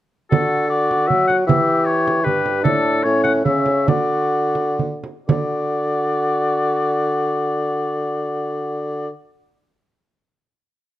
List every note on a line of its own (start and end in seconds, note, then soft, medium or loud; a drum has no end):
0.30 1.10 D3 medium
0.30 0.67 F#4 medium
0.30 0.67 A4 medium
0.30 frame drum medium
0.68 1.45 F#4 medium
0.68 1.09 D5 medium
0.91 frame drum soft
1.08 1.46 F#3 medium
1.08 1.27 E5 medium
1.08 frame drum soft
1.28 1.36 F#5 medium
1.28 frame drum soft
1.47 2.27 E3 medium
1.47 2.22 G4 medium
1.47 1.87 E5 medium
1.47 frame drum medium
1.85 2.26 C#5 medium
2.08 frame drum medium
2.23 2.66 G2 medium
2.23 2.62 G4 medium
2.23 2.63 B4 medium
2.23 frame drum soft
2.46 frame drum soft
2.62 3.04 A2 medium
2.62 3.06 D4 medium
2.62 3.05 A4 medium
2.62 frame drum medium
3.04 3.44 A2 medium
3.04 3.45 C#4 medium
3.04 3.23 C#5 medium
3.24 3.33 F#5 medium
3.24 frame drum medium
3.44 3.89 C#3 medium
3.44 3.89 C#4 medium
3.44 3.87 E5 medium
3.44 frame drum soft
3.66 frame drum soft
3.87 5.03 D3 medium
3.87 5.03 F#4 medium
3.87 4.77 D5 medium
3.87 frame drum medium
4.55 frame drum soft
4.79 frame drum soft
5.04 frame drum soft
5.28 9.08 D3 medium
5.28 9.08 F#4 medium
5.28 9.08 D5 medium
5.28 frame drum medium